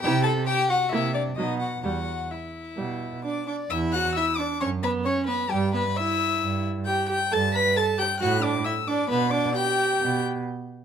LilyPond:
<<
  \new Staff \with { instrumentName = "Violin" } { \time 4/4 \key e \minor \tempo 4 = 133 g''8 a''8 g''8 fis''8 e''8 d''8 dis''8 fis''8 | fis''4 e''2 d'''8 d'''8 | e'''8 fis'''8 e'''8 d'''8 cis'''8 b''8 cis'''8 b''8 | g''8 b''8 e'''4. r8 g'''8 g'''8 |
a'''8 b'''8 a'''8 g'''8 fis'''8 d'''8 e'''8 d'''8 | b''8 d'''8 g'''4. r4. | }
  \new Staff \with { instrumentName = "Violin" } { \time 4/4 \key e \minor g'8 a'8 g'8 fis'8 e'8 d'8 dis'8 fis'8 | fis'4 e'2 d''8 d''8 | e''8 fis''8 e''8 d''8 cis''8 b'8 cis''8 b'8 | g'8 b'8 e''4. r8 g''8 g''8 |
a''8 b''8 a''8 g''8 fis''8 d''8 e''8 d''8 | b'8 d''8 g''4. r4. | }
  \new Staff \with { instrumentName = "Viola" } { \time 4/4 \key e \minor e'8 r4. bes8 r8 fis8 r8 | g8 r4. g8 r8 d'8 d'8 | e'8 fis'8 e'8 d'8 cis'8 b8 cis'8 b8 | g8 b8 e'4. r8 g'8 g'8 |
a'8 b'8 a'8 g'8 fis'8 d'8 e'8 d'8 | b8 d'8 g'4. r4. | }
  \new Staff \with { instrumentName = "Cello" } { \clef bass \time 4/4 \key e \minor c4 r4 c4 b,4 | e,4 r4 b,4 r4 | e,4 r4 fis,4 r4 | g,4 r4 g,4 r4 |
g,4 r4 a,4 r4 | b,4 r4 b,4 r4 | }
>>